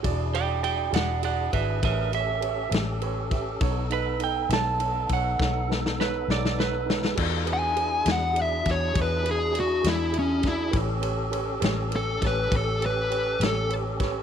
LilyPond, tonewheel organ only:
\new Staff \with { instrumentName = "Tonewheel organ" } { \time 12/8 \key e \mixolydian \tempo 4. = 67 <d' e' gis'>2. <d' gis' ais'>8 <cis' g' a'>2~ <cis' g' a'>8 | <b dis' a'>1. | <dis' f' a'>8 <d' e' gis'>1~ <d' e' gis'>4. | <cis' g' a'>1. | }